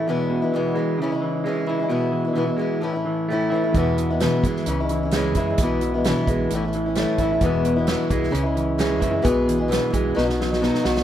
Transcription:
<<
  \new Staff \with { instrumentName = "Steel-string acoustic guitar" } { \time 4/4 \key e \major \tempo 4 = 130 <e, b, e gis b e'>8. <e gis b e'>16 <e, b, e gis b e'>8 <e gis b e'>8 <cis e gis cis' e'>16 <gis cis' e'>8. <cis e gis cis' e'>8 <e gis cis' e'>16 <gis cis' e'>16 | <b, e gis b e'>8. <gis b e'>16 <b, e gis b e'>16 <gis b e'>16 <e gis b e'>8 <a, e a cis' e'>16 <a cis' e'>8. <a, e a cis' e'>8 <e a cis' e'>16 <a cis' e'>16 | <e, b, e gis b e'>8. <e gis b e'>16 <e, b, e gis b e'>8 <e gis b e'>8 <cis e gis cis' e'>16 <gis cis' e'>8 <gis cis' e'>16 <cis e gis cis' e'>8 <e gis cis' e'>16 <gis cis' e'>16 | <b, e gis b e'>8. <gis b e'>16 <b, e gis b e'>8 <e gis b e'>8 <a, e a cis' e'>16 <a cis' e'>8 <a cis' e'>16 <a, e a cis' e'>8 <e a cis' e'>16 <a cis' e'>16 |
<e, b, e gis b e'>8. <e gis b e'>16 <e, b, e gis b e'>8 <e gis b e'>8 <cis e gis cis' e'>16 <gis cis' e'>8. <cis e gis cis' e'>8 <e gis cis' e'>16 <gis cis' e'>16 | <b, e gis b gis'>8. <gis b gis'>16 <b, e gis b gis'>8 <e gis b gis'>8 <b, fis b dis' fis'>16 <dis' fis'>8 <b dis' fis'>16 <b, fis b dis' fis'>8 <fis b dis' fis'>16 <dis' fis'>16 | }
  \new Staff \with { instrumentName = "Clean electric guitar" } { \clef bass \time 4/4 \key e \major e,8 b,8 e8 gis8 cis8 e8 gis8 e'8 | b,8 e8 e8 gis8 a,8 e8 a8 e'8 | e,8 b,8 e8 gis8 cis8 e8 gis8 e'8 | b,8 e8 e8 gis8 a,8 e8 a8 e'8 |
e,8 b,8 e8 gis8 cis8 e8 gis8 e'8 | b,8 e8 e8 gis8 b,8 fis8 b8 fis'8 | }
  \new Staff \with { instrumentName = "Fingered electric bass" } { \clef bass \time 4/4 \key e \major r1 | r1 | e,4. e8 cis,4. fis,8 | b,,4. b,,8 a,,4. a,,8 |
e,,4. c,8 cis,4. fis,8 | b,,4. b,,8 b,,4. b,,8 | }
  \new DrumStaff \with { instrumentName = "Drums" } \drummode { \time 4/4 r4 r4 r4 r4 | r4 r4 r4 r4 | <hh bd>8 hh8 <hh sn>8 <hh bd>16 sn16 hh8 hh8 <hh sn>8 <hh bd>8 | <hh bd>8 hh8 <hh sn>8 <hh bd>8 hh8 hh8 <hh sn>8 <hh bd>8 |
<hh bd>8 hh8 <hh sn>8 <hh bd>16 sn16 hh8 hh8 <hh sn>8 <hh bd>8 | <hh bd>8 hh8 <hh sn>8 <hh bd>8 sn16 sn16 sn16 sn16 sn16 sn16 sn16 sn16 | }
>>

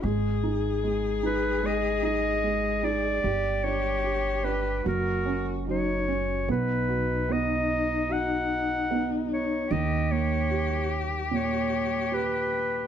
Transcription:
<<
  \new Staff \with { instrumentName = "Clarinet" } { \time 4/4 \key b \major \tempo 4 = 75 r4. b'8 dis''8 dis''4 d''8~ | d''8 cis''4 b'8 ais'4 cis''4 | b'4 dis''4 fis''4. cis''8 | dis''8 cis''4 r8 cis''4 b'4 | }
  \new Staff \with { instrumentName = "Cello" } { \time 4/4 \key b \major gis'1 | g'2 fis'4 dis'8 cis'8 | dis'1 | g'1 | }
  \new Staff \with { instrumentName = "Felt piano" } { \time 4/4 \key b \major gis8 dis'8 gis8 dis'8 gis8 dis'8 gis8 dis'8 | g8 d'8 g'8 d'8 fis8 cis'8 fis8 cis'8 | b8 fis'8 b4 fis'4 b4 | dis8 ais8 g'4 ais,4 g'4 | }
  \new Staff \with { instrumentName = "Upright bass" } { \clef bass \time 4/4 \key b \major gis,,1 | g,,2 fis,,2 | b,,1 | dis,1 | }
>>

